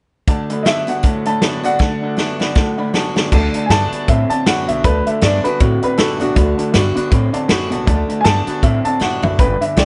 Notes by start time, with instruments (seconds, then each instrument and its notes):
0.27 clean electric guitar D3 A3, steel-string acoustic guitar D3, upright piano D5 F#5 A5, kick, closed hi-hat
0.50 clean electric guitar D3 A3, upright piano D5 F#5 B5, closed hi-hat
0.63 steel-string acoustic guitar D3 A3 D4 F#4, clean electric guitar D3 B3, upright piano D5 D#5 E5 A5, snare, closed hi-hat
0.87 clean electric guitar D3 B3, steel-string acoustic guitar D4 F#4, upright piano D5 F#5 A5, closed hi-hat
1.03 steel-string acoustic guitar A2, clean electric guitar D3 A3, upright piano D5 F#5 A5, kick, closed hi-hat
1.26 clean electric guitar D3 A3, upright piano D5 F#5 A5 B5, closed hi-hat
1.42 clean electric guitar D3 B3, steel-string acoustic guitar D3 A3 D4 F#4, upright piano D5 F#5 B5, snare, closed hi-hat
1.64 clean electric guitar D3 B3, steel-string acoustic guitar D4 F#4, upright piano D5 F#5 B5, closed hi-hat
1.79 steel-string acoustic guitar D3, clean electric guitar D3 A3, upright piano D5 F#5 A5, kick, snare
2.02 clean electric guitar D3 A3, upright piano D5 F#5 A5
2.17 steel-string acoustic guitar D3 A3 D4 F#4, clean electric guitar D3 B3, upright piano D5 F#5 A5, snare
2.40 clean electric guitar D3 B3, steel-string acoustic guitar D4 F#4, upright piano D5 F#5 B5, snare
2.55 steel-string acoustic guitar A2, clean electric guitar D3 A3, upright piano D5 F#5 A5, kick, snare
2.78 clean electric guitar D3 A3, upright piano D5 F#5 B5
2.93 steel-string acoustic guitar D3 A3 D4 F#4, clean electric guitar D3 B3, upright piano D5 F#5 A5, snare
3.16 clean electric guitar D3 B3, steel-string acoustic guitar D4 F#4, upright piano D5 F#5 A5, snare
3.32 upright bass D2, steel-string acoustic guitar D3, clean electric guitar D3 A3, upright piano D5 F#5 A5, kick, crash
3.54 clean electric guitar D3 A3, upright piano D5 F#5 A5, closed hi-hat
3.66 upright bass G2, clean electric guitar D3, upright piano G#5
3.70 steel-string acoustic guitar D3 A3 D4 F#4, clean electric guitar B3, upright piano F#5 A5, snare, closed hi-hat
3.92 clean electric guitar D3 B3, upright piano D5 F#5 B5, muted upright bass stroke, closed hi-hat
4.08 steel-string acoustic guitar A2, upright bass A2, clean electric guitar D3 C4, upright piano D5 E5 F#5 B5, kick, closed hi-hat
4.30 clean electric guitar D3 C4, upright piano D5 F#5 A5, muted upright bass stroke, closed hi-hat
4.46 upright bass F#2, steel-string acoustic guitar D3 A3 D4 F#4, clean electric guitar D3 B3, upright piano D5 F#5 B5, snare, closed hi-hat
4.68 upright bass B1, clean electric guitar D3 B3, upright piano D5 E5 F#5 A5, closed hi-hat
4.84 upright bass D2, steel-string acoustic guitar D3, clean electric guitar D3 A3, upright piano B4 D5 F#5 A5, kick, closed hi-hat
5.06 clean electric guitar D3 A3, upright piano D5 E5 F#5 A5, muted upright bass stroke, closed hi-hat
5.21 upright bass G2, steel-string acoustic guitar D3 A3 D4 F#4, clean electric guitar D3 B3, upright piano D5 F#5 A5, snare, closed hi-hat
5.44 clean electric guitar D3 B3, steel-string acoustic guitar D4 F#4, upright piano B4 D5 F#5 A5, muted upright bass stroke, closed hi-hat
5.60 steel-string acoustic guitar A2, upright bass A2, clean electric guitar D3 C4, upright piano F#4 D5 F#5 B5, kick, closed hi-hat
5.82 clean electric guitar D3 C4, upright piano B4 D5 F#5 B5, muted upright bass stroke, closed hi-hat
5.98 upright bass F#2, steel-string acoustic guitar D3 A3 D4 F#4, clean electric guitar D3 B3, upright piano A4 D5 F#5 B5, snare, closed hi-hat
6.20 upright bass B1, clean electric guitar D3 B3, upright piano D4 F#4 D5 F#5 A5, steel-string acoustic guitar D4 F#4, closed hi-hat
6.35 upright bass D2, clean electric guitar D3 A3, steel-string acoustic guitar D3, upright piano D5 F#5 B5, kick, closed hi-hat
6.57 clean electric guitar D3 A3, upright piano D5 F#5 A5, muted upright bass stroke, closed hi-hat
6.72 upright bass G2, clean electric guitar D3 B3, steel-string acoustic guitar D3 A3 D4 F#4, upright piano D5 F#5 B5, snare, closed hi-hat
6.95 clean electric guitar D3 B3, steel-string acoustic guitar D4 F#4, upright piano D5 F#5 B5, muted upright bass stroke, closed hi-hat
7.11 upright bass A2, steel-string acoustic guitar A2, clean electric guitar D3 C4, upright piano D5 F#5 B5, kick, closed hi-hat
7.33 clean electric guitar D3 C4, upright piano D5 F#5 A5, muted upright bass stroke, closed hi-hat
7.48 upright bass F#2, clean electric guitar D3 B3, steel-string acoustic guitar D3 A3 D4 F#4, upright piano D5 F#5 B5, snare, closed hi-hat
7.70 upright bass B1, clean electric guitar D3 B3, steel-string acoustic guitar D4 F#4, upright piano D5 F#5 A5, closed hi-hat
7.86 upright bass D2, clean electric guitar D3 A3, steel-string acoustic guitar D3, upright piano D5 F#5 A5, kick, closed hi-hat
8.08 clean electric guitar D3 A3, upright piano D5 F#5 A5, closed hi-hat
8.21 clean electric guitar D3 B3, upright piano G#5 A5
8.25 upright bass G2, steel-string acoustic guitar D3 A3 D4 F#4, snare, closed hi-hat
8.47 clean electric guitar D3 B3, steel-string acoustic guitar D4 F#4, upright piano D5 F#5 B5, muted upright bass stroke, closed hi-hat
8.62 upright bass A2, steel-string acoustic guitar A2, clean electric guitar D3 C4, upright piano D5 E5 F#5 A5, kick, closed hi-hat
8.85 clean electric guitar D3 C4, upright piano D5 F#5 A5, muted upright bass stroke, closed hi-hat
9.00 upright bass F#2, steel-string acoustic guitar D3 A3 D4 F#4, clean electric guitar D3 B3, upright piano D5 F#5 A5, snare
9.22 upright bass B1, clean electric guitar D3 B3, steel-string acoustic guitar D4 F#4, upright piano D5 E5 F#5 B5, floor tom
9.39 upright bass G1, clean electric guitar G2 D3, steel-string acoustic guitar G2, upright piano B4 D5 G5 B5, kick, closed hi-hat
9.61 clean electric guitar G2 D3, upright piano D5 E5 G5 B5, muted upright bass stroke, closed hi-hat
9.76 upright bass B1, clean electric guitar G2 E3, steel-string acoustic guitar D3 G3 B3 G4, upright piano D5 G5 C#6, snare, closed hi-hat